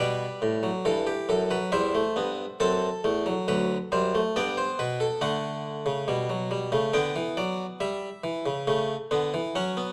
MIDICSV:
0, 0, Header, 1, 2, 480
1, 0, Start_track
1, 0, Key_signature, 1, "major"
1, 0, Tempo, 881057
1, 1421, Time_signature, 3, 2, 24, 8
1, 2378, Tempo, 864553
1, 5465, End_track
2, 0, Start_track
2, 0, Title_t, "Harpsichord"
2, 0, Program_c, 0, 6
2, 0, Note_on_c, 0, 47, 80
2, 0, Note_on_c, 0, 55, 95
2, 0, Note_on_c, 0, 71, 83
2, 0, Note_on_c, 0, 74, 76
2, 135, Note_off_c, 0, 47, 0
2, 229, Note_on_c, 0, 45, 70
2, 335, Note_off_c, 0, 55, 0
2, 344, Note_on_c, 0, 54, 81
2, 375, Note_off_c, 0, 45, 0
2, 452, Note_off_c, 0, 71, 0
2, 459, Note_off_c, 0, 54, 0
2, 464, Note_on_c, 0, 43, 74
2, 466, Note_on_c, 0, 52, 86
2, 466, Note_on_c, 0, 69, 77
2, 580, Note_off_c, 0, 69, 0
2, 581, Note_on_c, 0, 67, 69
2, 612, Note_off_c, 0, 43, 0
2, 698, Note_off_c, 0, 67, 0
2, 702, Note_on_c, 0, 42, 70
2, 705, Note_on_c, 0, 69, 70
2, 813, Note_off_c, 0, 52, 0
2, 819, Note_off_c, 0, 69, 0
2, 821, Note_on_c, 0, 54, 78
2, 821, Note_on_c, 0, 71, 76
2, 851, Note_off_c, 0, 42, 0
2, 925, Note_off_c, 0, 74, 0
2, 937, Note_off_c, 0, 71, 0
2, 938, Note_off_c, 0, 54, 0
2, 938, Note_on_c, 0, 55, 89
2, 938, Note_on_c, 0, 76, 79
2, 939, Note_on_c, 0, 40, 77
2, 939, Note_on_c, 0, 72, 78
2, 1056, Note_off_c, 0, 55, 0
2, 1061, Note_on_c, 0, 57, 82
2, 1088, Note_off_c, 0, 40, 0
2, 1177, Note_on_c, 0, 43, 68
2, 1178, Note_off_c, 0, 57, 0
2, 1180, Note_on_c, 0, 59, 79
2, 1327, Note_off_c, 0, 43, 0
2, 1329, Note_off_c, 0, 59, 0
2, 1405, Note_off_c, 0, 76, 0
2, 1406, Note_off_c, 0, 72, 0
2, 1417, Note_on_c, 0, 69, 85
2, 1418, Note_on_c, 0, 42, 77
2, 1418, Note_on_c, 0, 60, 95
2, 1418, Note_on_c, 0, 81, 80
2, 1568, Note_off_c, 0, 42, 0
2, 1568, Note_off_c, 0, 60, 0
2, 1658, Note_on_c, 0, 40, 67
2, 1659, Note_on_c, 0, 57, 89
2, 1777, Note_off_c, 0, 57, 0
2, 1777, Note_on_c, 0, 54, 89
2, 1808, Note_off_c, 0, 40, 0
2, 1885, Note_off_c, 0, 69, 0
2, 1891, Note_off_c, 0, 54, 0
2, 1896, Note_on_c, 0, 38, 78
2, 1897, Note_on_c, 0, 54, 90
2, 1898, Note_on_c, 0, 71, 78
2, 2047, Note_off_c, 0, 38, 0
2, 2047, Note_off_c, 0, 54, 0
2, 2048, Note_off_c, 0, 71, 0
2, 2136, Note_on_c, 0, 42, 73
2, 2136, Note_on_c, 0, 55, 86
2, 2137, Note_on_c, 0, 72, 71
2, 2254, Note_off_c, 0, 55, 0
2, 2260, Note_on_c, 0, 57, 96
2, 2285, Note_off_c, 0, 42, 0
2, 2286, Note_off_c, 0, 72, 0
2, 2356, Note_off_c, 0, 81, 0
2, 2375, Note_off_c, 0, 57, 0
2, 2376, Note_on_c, 0, 43, 75
2, 2377, Note_on_c, 0, 74, 81
2, 2378, Note_on_c, 0, 59, 94
2, 2378, Note_on_c, 0, 79, 86
2, 2495, Note_off_c, 0, 74, 0
2, 2495, Note_on_c, 0, 72, 74
2, 2527, Note_off_c, 0, 43, 0
2, 2614, Note_off_c, 0, 72, 0
2, 2615, Note_on_c, 0, 47, 74
2, 2616, Note_on_c, 0, 71, 75
2, 2732, Note_on_c, 0, 69, 76
2, 2734, Note_off_c, 0, 71, 0
2, 2765, Note_off_c, 0, 47, 0
2, 2844, Note_off_c, 0, 79, 0
2, 2845, Note_off_c, 0, 59, 0
2, 2849, Note_on_c, 0, 57, 92
2, 2850, Note_on_c, 0, 50, 107
2, 2851, Note_on_c, 0, 78, 91
2, 2852, Note_off_c, 0, 69, 0
2, 3201, Note_off_c, 0, 50, 0
2, 3208, Note_on_c, 0, 49, 95
2, 3316, Note_off_c, 0, 57, 0
2, 3328, Note_off_c, 0, 49, 0
2, 3330, Note_on_c, 0, 55, 79
2, 3331, Note_on_c, 0, 47, 102
2, 3448, Note_off_c, 0, 55, 0
2, 3450, Note_on_c, 0, 54, 79
2, 3568, Note_off_c, 0, 54, 0
2, 3569, Note_on_c, 0, 55, 73
2, 3680, Note_off_c, 0, 47, 0
2, 3686, Note_on_c, 0, 57, 82
2, 3687, Note_off_c, 0, 55, 0
2, 3687, Note_on_c, 0, 49, 96
2, 3786, Note_off_c, 0, 78, 0
2, 3805, Note_on_c, 0, 50, 102
2, 3806, Note_off_c, 0, 49, 0
2, 3806, Note_off_c, 0, 57, 0
2, 3806, Note_on_c, 0, 59, 84
2, 3806, Note_on_c, 0, 79, 84
2, 3925, Note_off_c, 0, 50, 0
2, 3929, Note_on_c, 0, 52, 95
2, 3956, Note_off_c, 0, 79, 0
2, 4046, Note_off_c, 0, 52, 0
2, 4048, Note_on_c, 0, 74, 80
2, 4049, Note_on_c, 0, 54, 94
2, 4197, Note_off_c, 0, 74, 0
2, 4198, Note_off_c, 0, 54, 0
2, 4273, Note_off_c, 0, 59, 0
2, 4288, Note_on_c, 0, 55, 107
2, 4288, Note_on_c, 0, 76, 88
2, 4437, Note_off_c, 0, 55, 0
2, 4527, Note_on_c, 0, 52, 90
2, 4644, Note_off_c, 0, 52, 0
2, 4650, Note_on_c, 0, 49, 90
2, 4764, Note_off_c, 0, 49, 0
2, 4771, Note_on_c, 0, 49, 99
2, 4771, Note_on_c, 0, 57, 78
2, 4920, Note_off_c, 0, 57, 0
2, 4921, Note_off_c, 0, 49, 0
2, 5013, Note_on_c, 0, 59, 76
2, 5014, Note_on_c, 0, 50, 94
2, 5131, Note_off_c, 0, 50, 0
2, 5140, Note_on_c, 0, 52, 92
2, 5164, Note_off_c, 0, 59, 0
2, 5233, Note_off_c, 0, 76, 0
2, 5256, Note_off_c, 0, 52, 0
2, 5259, Note_on_c, 0, 54, 97
2, 5260, Note_on_c, 0, 78, 79
2, 5261, Note_on_c, 0, 61, 82
2, 5378, Note_off_c, 0, 61, 0
2, 5379, Note_on_c, 0, 59, 76
2, 5465, Note_off_c, 0, 54, 0
2, 5465, Note_off_c, 0, 59, 0
2, 5465, Note_off_c, 0, 78, 0
2, 5465, End_track
0, 0, End_of_file